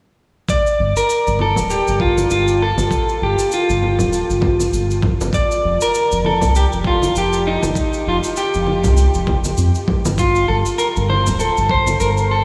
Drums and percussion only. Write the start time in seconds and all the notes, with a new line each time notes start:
0.49 kick, cabasa
0.66 cabasa
0.97 cabasa
1.10 cabasa
1.27 cabasa
1.39 high conga
1.56 low conga, cabasa
1.70 cabasa
1.88 cabasa
2.00 kick
2.18 high conga, cabasa
2.31 cabasa
2.48 cabasa
2.78 high conga, cabasa
2.91 kick, cabasa
3.09 cabasa
3.39 cabasa
3.52 cabasa
3.70 cabasa
3.82 high conga
3.99 low conga, cabasa
4.13 cabasa
4.30 cabasa
4.41 kick, high conga
4.60 high conga, cabasa
4.73 cabasa
4.91 cabasa
5.02 kick, low conga
5.21 high conga, cabasa
5.33 kick, cabasa
5.51 cabasa
5.81 cabasa
5.95 cabasa
6.12 cabasa
6.25 high conga
6.41 low conga, cabasa
6.55 cabasa
6.72 cabasa
6.84 kick
7.02 high conga, cabasa
7.16 cabasa
7.33 cabasa
7.63 high conga, cabasa
7.75 kick, cabasa
7.93 cabasa
8.24 cabasa
8.37 cabasa
8.54 cabasa
8.67 high conga
8.84 low conga, cabasa
8.97 cabasa
9.14 cabasa
9.27 kick, high conga
9.44 high conga, cabasa
9.58 cabasa
9.75 cabasa
9.88 kick, low conga
10.05 high conga, cabasa
10.18 kick, cabasa
10.35 cabasa
10.66 cabasa
10.79 cabasa
10.96 cabasa
11.10 high conga
11.27 low conga, cabasa
11.40 cabasa
11.57 cabasa
11.69 kick
11.87 high conga, cabasa
12.00 cabasa
12.17 cabasa